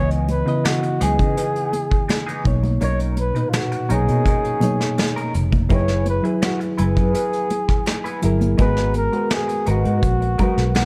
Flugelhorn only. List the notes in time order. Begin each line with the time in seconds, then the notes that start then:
0.30 B4
0.66 F#4
1.03 G#4
2.84 C#5
3.20 B4
3.49 F4
3.56 F#4
3.92 G#4
5.73 C#5
6.09 B4
6.44 F#4
6.81 G#4
8.60 B4
8.97 A#4
9.33 G#4
9.69 F#4